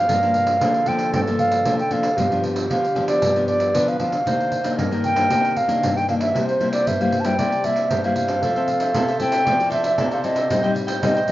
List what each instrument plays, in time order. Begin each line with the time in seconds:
Already playing: flute F5
0.07 nylon-string guitar G2 F3 A#3 D4, clarinet A#4, pandeiro
0.22 nylon-string guitar F3 A#3 D4, pandeiro
0.34 pandeiro
0.47 pandeiro
0.60 nylon-string guitar D3 F3 A#3 D4, clarinet A4, pandeiro
0.74 pandeiro
0.86 nylon-string guitar F3 A#3 D4, flute G5, pandeiro
0.99 pandeiro
1.13 nylon-string guitar G2, flute G5, pandeiro
1.27 nylon-string guitar F3 A#3 D4, pandeiro
1.39 flute F5, pandeiro
1.52 pandeiro
1.65 nylon-string guitar D3 F3 A#3 D4, pandeiro
1.79 flute G5, pandeiro
1.90 nylon-string guitar F3 A#3 D4, flute F5, pandeiro
2.03 pandeiro
2.17 nylon-string guitar G2 F3 B3 D4, clarinet G4, pandeiro
2.31 nylon-string guitar F3 B3 D4, pandeiro
2.44 pandeiro
2.56 pandeiro
2.70 nylon-string guitar D3 F3 B3 D4, flute F5, pandeiro
2.84 pandeiro
2.95 nylon-string guitar F3 B3 D4, pandeiro
3.08 flute D5, pandeiro
3.22 nylon-string guitar G2, pandeiro
3.36 nylon-string guitar F3 B3 D4, pandeiro
3.48 flute D5, pandeiro
3.60 pandeiro
3.74 nylon-string guitar D3 F3 B3 D4, clarinet B4, pandeiro
3.88 flute F5, pandeiro
3.99 nylon-string guitar F3 B3 D4, flute F5, pandeiro
4.12 pandeiro
4.26 nylon-string guitar C3 D#3 A#3 D4, clarinet C5, pandeiro
4.41 pandeiro
4.52 pandeiro
4.64 nylon-string guitar D#3 A#3 D4, pandeiro
4.78 nylon-string guitar G2, clarinet A#4, pandeiro
4.91 nylon-string guitar D#3 A#3 D4, pandeiro
5.04 flute G5, pandeiro
5.16 nylon-string guitar D#3 A#3 D4, pandeiro
5.30 nylon-string guitar C3 D#3 A#3 D4, pandeiro
5.45 pandeiro
5.57 flute F5, pandeiro
5.68 nylon-string guitar D#3 A#3 D4, pandeiro
5.83 nylon-string guitar G2, pandeiro
5.97 flute G5, pandeiro
6.08 nylon-string guitar D#3 A#3 D4, flute F5, pandeiro
6.21 flute E5, pandeiro
6.34 nylon-string guitar C3 G3 A#3 E4, clarinet C5, pandeiro
6.49 flute C5, pandeiro
6.60 nylon-string guitar G3 A#3 E4, pandeiro
6.73 flute D5, pandeiro
6.87 nylon-string guitar G2, flute E5, pandeiro
7.00 nylon-string guitar G3 A#3 E4, flute F5, pandeiro
7.12 pandeiro
7.20 nylon-string guitar G3 A#3, flute A5
7.25 nylon-string guitar E4, flute G5, pandeiro
7.39 nylon-string guitar C3 G3 A#3 E4, clarinet D5, pandeiro
7.52 pandeiro
7.64 nylon-string guitar G3 A#3 E4, flute E5, pandeiro
7.76 pandeiro
7.91 nylon-string guitar G2, clarinet C5, pandeiro
8.04 nylon-string guitar G3 A#3 E4, flute F5, pandeiro
8.16 flute F5, pandeiro
8.28 nylon-string guitar C4 A4, pandeiro
8.43 nylon-string guitar F3, cavaquinho F4 A4 C5 E5, clarinet A4, pandeiro
8.56 nylon-string guitar C4 A4, cavaquinho A4 C5 E5, pandeiro
8.68 muted cavaquinho stroke, pandeiro
8.80 cavaquinho A4 C5 E5, pandeiro
8.94 nylon-string guitar C3 C4 E4 A4, cavaquinho F4 A4 C5 E5, pandeiro
9.08 cavaquinho A4 C5 E5, pandeiro
9.20 nylon-string guitar C4 E4 A4, flute G5, pandeiro
9.31 cavaquinho A4 C5 E5, pandeiro
9.46 nylon-string guitar F3, cavaquinho F4 A4 C5 E5, clarinet D5, pandeiro
9.60 nylon-string guitar C4 E4 A4, muted cavaquinho stroke, pandeiro
9.70 cavaquinho F4 A4 C5 E5, flute E5, pandeiro
9.83 cavaquinho A4 C5 E5, pandeiro
9.98 nylon-string guitar C3 C4 E4 A4, pandeiro
10.11 cavaquinho A4 C5 E5, flute F5, pandeiro
10.23 nylon-string guitar C4 E4 A4, cavaquinho F4 A4 C5 E5, flute D#5, pandeiro
10.35 cavaquinho A4 C5 E5, pandeiro
10.50 nylon-string guitar A2 G3 C4 D#4, cavaquinho A4 C5 D#5 G5, clarinet C5, pandeiro
10.63 nylon-string guitar G3 C4 D#4, cavaquinho C5 D#5 G5, pandeiro
10.74 muted cavaquinho stroke, pandeiro
10.87 cavaquinho C5 D#5 G5, pandeiro
11.01 nylon-string guitar A2 G3 C4 D#4, cavaquinho A4 C5 D#5 G5, flute D#5, pandeiro
11.15 cavaquinho C5 D#5 G5, pandeiro
11.28 nylon-string guitar G3 C4, pandeiro